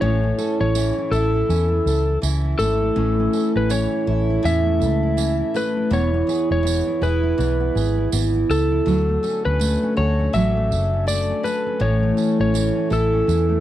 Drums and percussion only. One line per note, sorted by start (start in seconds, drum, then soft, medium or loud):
0.39 tambourine soft
0.75 tambourine medium
1.13 tambourine soft
1.50 tambourine medium
1.87 tambourine soft
2.23 tambourine medium
2.60 tambourine soft
3.33 tambourine soft
3.70 tambourine medium
4.45 tambourine medium
4.81 tambourine soft
5.18 tambourine medium
5.55 tambourine soft
5.93 tambourine soft
6.29 tambourine soft
6.67 tambourine medium
7.03 tambourine soft
7.40 tambourine soft
7.77 tambourine soft
8.12 tambourine medium
8.50 tambourine soft
8.88 tambourine soft
9.24 tambourine soft
9.61 tambourine medium
10.34 tambourine soft
10.72 tambourine soft
11.08 tambourine medium
11.45 tambourine soft
12.18 tambourine soft
12.55 tambourine medium
12.92 tambourine soft
13.29 tambourine medium